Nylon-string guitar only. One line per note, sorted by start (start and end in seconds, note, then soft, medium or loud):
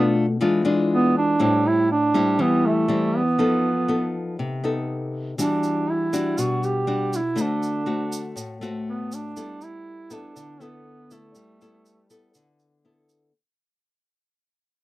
0.00 0.39 B2 medium
0.00 0.25 A3 medium
0.00 0.25 D4 soft
0.00 0.25 F4 medium
0.41 1.38 E3 medium
0.41 0.62 G#3 medium
0.41 0.62 D4 medium
0.41 0.62 F4 medium
0.65 1.36 G#3 medium
0.65 1.36 D4 medium
0.65 1.36 F4 medium
1.39 2.37 A2 medium
1.39 1.89 G3 soft
1.39 1.89 C4 soft
1.39 1.90 E4 medium
2.14 2.85 G3 medium
2.14 2.85 C4 medium
2.14 2.85 E4 medium
2.39 3.36 E3 medium
2.88 3.21 G3 medium
2.88 3.21 C4 soft
2.88 3.21 E4 soft
3.39 4.36 F3 medium
3.39 3.71 B3 soft
3.39 3.71 D#4 soft
3.39 3.72 A4 medium
3.88 4.59 B3 medium
3.88 4.60 D#4 soft
3.88 4.60 A4 soft
4.39 5.36 C3 medium
4.64 5.34 B3 soft
4.64 5.34 D#4 medium
4.64 5.35 A4 soft
5.38 6.35 E3 medium
5.38 6.09 G3 soft
5.38 6.09 D4 soft
5.38 6.09 F#4 soft
6.13 6.83 G3 medium
6.13 6.84 D4 medium
6.13 6.84 F#4 medium
6.38 7.35 B2 medium
6.87 7.19 G3 soft
6.87 7.19 D4 medium
6.87 7.20 F#4 medium
7.35 8.33 D3 medium
7.35 7.82 A3 medium
7.35 7.82 C4 soft
7.35 7.83 F#4 medium
7.86 8.57 A3 soft
7.86 8.57 C4 soft
7.86 8.57 F#4 medium
8.36 9.33 A2 medium
8.61 9.32 A3 soft
8.61 9.33 C4 soft
8.61 9.33 F#4 medium
9.37 10.33 G3 medium
9.37 10.07 B3 soft
9.37 10.07 E4 soft
9.37 10.07 A4 medium
10.10 10.56 B3 medium
10.10 10.57 E4 medium
10.10 10.57 A4 medium
10.36 11.33 D3 medium
10.60 11.06 B3 soft
10.60 11.06 E4 medium
10.60 11.07 A4 medium
11.11 11.56 B3 medium
11.11 11.56 E4 medium
11.11 11.57 A4 medium
11.36 12.32 G3 medium
11.61 12.06 B3 medium
11.61 12.06 E4 medium
11.61 12.06 A4 medium
12.10 12.80 B3 medium
12.10 12.81 E4 medium
12.10 12.81 A4 medium
12.35 13.31 D3 medium
12.85 13.30 B3 soft
12.85 13.30 E4 soft
12.85 13.30 A4 soft